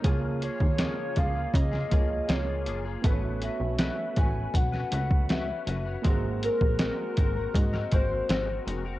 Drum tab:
HH |x-x-x-x-x-x-x-x-|x-x-x-x-x-x-x-x-|x-x-x-x-x-x-x-x-|
SD |----o----o--o---|----o----o--o---|----o----o--o---|
BD |o--o--o-o-o-----|o-----o-o--o----|o--o--o-o-o-----|